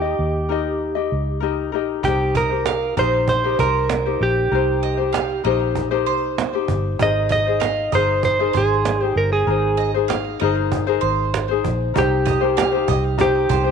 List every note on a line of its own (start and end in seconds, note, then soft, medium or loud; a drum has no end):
0.00 0.14 D#2 loud
0.00 1.39 G4 medium
0.00 0.49 G4 soft
0.00 0.48 D#5 soft
0.05 0.49 D#4 soft
0.19 1.07 D#2 medium
0.49 0.96 D#4 medium
0.49 0.95 G4 medium
0.49 0.95 A#4 medium
0.49 0.94 D#5 medium
0.95 1.41 D#4 soft
0.95 1.42 G4 medium
0.95 1.41 D#5 soft
1.12 1.74 C#2 medium
1.40 1.72 D#4 medium
1.40 1.73 G4 medium
1.40 1.71 A#4 medium
1.40 1.74 D#5 medium
1.72 2.02 A#1 medium
1.72 2.04 D#4 medium
1.72 2.04 G4 medium
1.72 2.02 A#4 medium
1.72 2.05 D#5 medium
2.03 2.93 C2 loud
2.03 2.51 D#4 medium
2.03 2.36 G4 medium
2.03 2.50 G4 medium
2.03 2.50 A#4 medium
2.03 cajon bass medium
2.07 2.49 C5 medium
2.35 2.94 A#4 medium
2.35 2.50 D#5 medium
2.35 cajon bass medium
2.50 2.97 D#4 soft
2.50 2.97 G4 soft
2.50 2.96 C5 soft
2.66 2.95 F5 medium
2.66 cajon slap medium
2.97 3.55 A#1 medium
2.97 3.44 D#4 medium
2.97 3.44 G4 medium
2.97 3.43 A#4 medium
2.97 3.28 C5 medium
2.97 3.42 C5 medium
2.97 3.12 D#5 medium
2.97 cajon bass medium
3.12 cajon slap soft
3.27 3.60 C5 medium
3.27 cajon bass medium
3.44 4.08 D#4 medium
3.44 4.05 G4 medium
3.44 4.05 A#4 medium
3.44 4.05 C5 medium
3.59 4.17 C2 medium
3.59 4.23 A#4 medium
3.59 4.03 C5 medium
3.59 cajon bass medium
3.89 cajon slap loud
4.05 4.51 D#4 soft
4.05 4.52 G4 soft
4.05 4.51 C5 soft
4.20 4.49 A#1 medium
4.20 5.42 G4 medium
4.20 cajon slap soft
4.51 5.40 C2 loud
4.51 4.98 D#4 medium
4.51 4.98 G4 medium
4.51 4.98 A#4 medium
4.51 4.96 C5 medium
4.51 cajon slap soft
4.83 4.97 D#5 medium
4.83 cajon slap soft
4.97 5.45 G4 soft
4.97 5.44 C5 medium
5.01 5.44 D#4 soft
5.13 5.42 F5 medium
5.13 cajon slap loud
5.44 6.07 A#1 medium
5.44 5.91 D#4 medium
5.44 5.90 G4 medium
5.44 5.91 A#4 medium
5.44 5.90 C5 medium
5.44 5.59 D#5 medium
5.44 cajon slap soft
5.60 cajon slap soft
5.75 cajon bass medium
5.91 6.56 D#4 medium
5.91 6.53 G4 medium
5.91 6.52 A#4 medium
5.91 6.53 C5 medium
6.06 6.65 C2 medium
6.06 6.50 C5 medium
6.06 cajon slap soft
6.38 cajon slap loud
6.53 6.99 D#4 soft
6.53 7.00 G4 medium
6.53 6.99 C5 medium
6.68 6.97 G1 medium
6.68 cajon bass medium
6.99 7.89 G#1 loud
6.99 7.46 D#4 medium
6.99 7.47 G#4 medium
6.99 7.46 A#4 medium
6.99 7.45 C5 medium
6.99 7.31 D#5 medium
6.99 cajon bass loud
7.29 7.45 D#5 medium
7.29 7.95 D#5 loud
7.29 cajon bass medium
7.46 7.94 D#4 soft
7.46 7.94 G#4 soft
7.46 7.93 C5 medium
7.60 7.92 F5 medium
7.60 cajon slap loud
7.92 8.51 G1 medium
7.92 8.40 D#4 medium
7.92 8.39 G#4 medium
7.92 8.39 A#4 medium
7.92 8.24 C5 medium
7.92 8.07 D#5 medium
7.92 cajon bass medium
7.96 8.38 C5 medium
8.07 cajon slap soft
8.23 8.56 C5 medium
8.23 cajon bass medium
8.39 9.04 D#4 medium
8.39 9.01 G#4 medium
8.39 9.00 A#4 medium
8.39 9.01 C5 medium
8.53 9.13 G#1 medium
8.53 9.02 G#4 medium
8.53 8.98 C5 medium
8.53 cajon bass medium
8.85 cajon slap loud
9.01 9.47 D#4 soft
9.01 9.17 G4 medium
9.01 9.48 G#4 soft
9.01 9.46 C5 soft
9.16 9.45 G1 medium
9.16 9.32 A#4 medium
9.16 cajon slap soft
9.33 9.90 G#4 medium
9.47 10.36 G#1 loud
9.47 9.94 D#4 medium
9.47 9.95 G#4 medium
9.47 9.94 A#4 medium
9.47 9.93 C5 medium
9.47 cajon slap soft
9.77 9.93 D#5 medium
9.77 cajon slap soft
9.94 10.40 D#4 soft
9.94 10.41 G#4 soft
9.94 10.41 C5 medium
10.08 10.38 F5 medium
10.08 cajon slap loud
10.40 10.99 G1 medium
10.40 10.87 D#4 medium
10.40 10.87 G#4 medium
10.40 10.87 A#4 medium
10.40 10.86 C5 medium
10.40 10.55 D#5 medium
10.40 cajon slap soft
10.57 cajon slap soft
10.72 cajon bass medium
10.87 11.52 D#4 medium
10.87 11.49 G#4 medium
10.87 11.48 A#4 medium
10.87 11.48 C5 medium
11.01 11.60 G#1 medium
11.01 11.45 C5 medium
11.01 cajon slap soft
11.19 cajon slap soft
11.34 cajon slap loud
11.48 11.96 G#4 medium
11.48 11.94 C5 medium
11.53 11.94 D#4 soft
11.64 11.93 A#1 medium
11.64 cajon bass medium
11.81 cajon slap soft
11.94 12.84 C2 loud
11.94 12.41 D#4 medium
11.94 12.40 G4 medium
11.94 12.41 A#4 medium
11.94 12.40 C5 medium
11.94 cajon bass loud
11.98 13.16 G4 medium
12.26 12.40 D#5 medium
12.26 cajon bass medium
12.41 12.73 D#4 medium
12.41 12.72 G4 medium
12.41 12.73 A#4 medium
12.41 12.70 C5 medium
12.57 12.88 F5 medium
12.57 cajon slap loud
12.71 13.18 D#4 soft
12.71 13.18 G4 medium
12.71 13.18 C5 medium
12.88 13.46 C2 medium
12.88 13.02 D#5 medium
12.88 cajon bass medium
13.03 cajon slap soft
13.18 13.65 D#4 medium
13.18 13.65 G4 medium
13.18 13.71 G4 medium
13.18 13.65 A#4 medium
13.18 13.63 C5 medium
13.18 cajon bass loud
13.49 13.71 C2 medium
13.49 13.71 C5 medium
13.49 cajon bass medium
13.64 13.71 D#4 soft
13.64 13.71 G4 medium
13.64 13.71 C5 medium